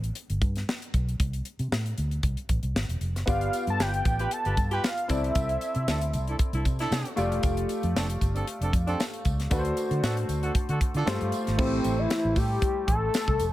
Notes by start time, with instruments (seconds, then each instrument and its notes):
Already playing: fingered electric bass A1
0.04 closed hi-hat
0.15 closed hi-hat
0.30 fingered electric bass G1, closed hi-hat
0.42 fingered electric bass G2, kick, closed hi-hat
0.56 snare, closed hi-hat
0.69 snare
0.82 closed hi-hat
0.94 fingered electric bass B1, kick, closed hi-hat
1.09 closed hi-hat
1.20 fingered electric bass C2, kick, closed hi-hat
1.33 closed hi-hat
1.45 closed hi-hat
1.59 fingered electric bass C3, closed hi-hat
1.72 fingered electric bass A2, snare
1.86 closed hi-hat
1.98 fingered electric bass D2, closed hi-hat
2.11 closed hi-hat
2.23 fingered electric bass C2, kick, closed hi-hat
2.37 closed hi-hat
2.49 fingered electric bass A1, kick, closed hi-hat
2.63 fingered electric bass C2, closed hi-hat
2.75 fingered electric bass G#1, snare
2.89 fingered electric bass E1, closed hi-hat
3.01 fingered electric bass F1, closed hi-hat
3.15 fingered electric bass F#1, snare, closed hi-hat
3.26 fingered electric bass G1, grand piano B3 F4 G4 D5, kick, closed hi-hat, tambourine
3.30 analog synth lead F5
3.41 closed hi-hat
3.53 closed hi-hat, tambourine
3.67 fingered electric bass G2, analog synth lead A5, closed hi-hat
3.79 fingered electric bass G1, horn section F4 G4 B4, analog synth lead G5, snare, tambourine
3.94 closed hi-hat
4.05 fingered electric bass A1, kick, closed hi-hat, tambourine
4.19 horn section F4 G4 B4, closed hi-hat
4.31 analog synth lead A5, closed hi-hat
4.45 fingered electric bass G1, horn section F4 G4 B4, closed hi-hat
4.57 fingered electric bass G2, kick, closed hi-hat, tambourine
4.71 horn section F4 G4 B4, analog synth lead G5, closed hi-hat
4.83 analog synth lead F5, snare, tambourine
4.97 closed hi-hat
5.08 fingered electric bass C2, grand piano C4 E4 A4 D5, analog synth lead E5, kick, closed hi-hat, tambourine
5.24 closed hi-hat
5.35 fingered electric bass C2, kick, closed hi-hat, tambourine
5.49 closed hi-hat
5.61 closed hi-hat, tambourine
5.75 fingered electric bass C3, closed hi-hat
5.87 fingered electric bass D2, horn section D4 E4 A4, snare, tambourine
6.01 closed hi-hat
6.13 fingered electric bass C2, closed hi-hat, tambourine
6.27 horn section D4 E4 A4, closed hi-hat
6.39 kick, closed hi-hat
6.53 fingered electric bass C2, horn section D4 E4 A4, closed hi-hat
6.65 fingered electric bass C3, kick, closed hi-hat, tambourine
6.79 horn section D4 E4 A4, snare, closed hi-hat
6.91 fingered electric bass C3, snare, tambourine
7.05 closed hi-hat
7.16 fingered electric bass F1, grand piano A3 F4 G4 D5, closed hi-hat, tambourine
7.32 fingered electric bass E1, closed hi-hat
7.43 fingered electric bass F1, kick, closed hi-hat, tambourine
7.57 closed hi-hat
7.69 closed hi-hat, tambourine
7.83 fingered electric bass F2, closed hi-hat
7.96 fingered electric bass F1, horn section C4 D4 A4, snare, tambourine
8.10 closed hi-hat
8.21 fingered electric bass G1, kick, closed hi-hat, tambourine
8.35 horn section C4 D4 A4, closed hi-hat
8.47 closed hi-hat
8.61 fingered electric bass F1, horn section C4 D4 A4, closed hi-hat
8.73 fingered electric bass F2, kick, closed hi-hat, tambourine
8.87 horn section C4 D4 A4, closed hi-hat
9.00 snare, tambourine
9.13 closed hi-hat
9.25 fingered electric bass C#2, kick, closed hi-hat, tambourine
9.40 snare, closed hi-hat
9.50 fingered electric bass D2, grand piano A3 D4 F#4 B4, kick, closed hi-hat, tambourine
9.59 grand piano C5
9.65 closed hi-hat
9.77 closed hi-hat, tambourine
9.91 fingered electric bass D3, closed hi-hat
10.03 fingered electric bass A2, horn section D4 F#4 A4, snare, tambourine
10.17 closed hi-hat
10.29 fingered electric bass D2, closed hi-hat, tambourine
10.43 horn section D4 F#4 A4, closed hi-hat
10.55 kick, closed hi-hat
10.69 fingered electric bass D3, horn section D4 F#4 A4, closed hi-hat
10.81 kick, closed hi-hat
10.94 fingered electric bass D3, horn section D4 F4 A4, closed hi-hat
11.06 fingered electric bass G2, grand piano A3 F4 G4 C5, snare, tambourine
11.21 fingered electric bass G2, closed hi-hat
11.32 closed hi-hat, tambourine
11.47 fingered electric bass G#1, snare, closed hi-hat
11.57 fingered electric bass A1, grand piano A3 E4 G4 C5, analog synth lead C4, kick, crash, tambourine
11.84 fingered electric bass A1, closed hi-hat, tambourine
11.99 analog synth lead E4
12.10 snare, closed hi-hat, tambourine
12.25 fingered electric bass A1
12.36 fingered electric bass A2, analog synth lead G4, kick, open hi-hat, tambourine
12.62 kick, closed hi-hat
12.87 fingered electric bass A1, analog synth lead A4, kick, closed hi-hat
13.14 snare, closed hi-hat, tambourine
13.28 fingered electric bass C2, kick
13.40 fingered electric bass F1, closed hi-hat, tambourine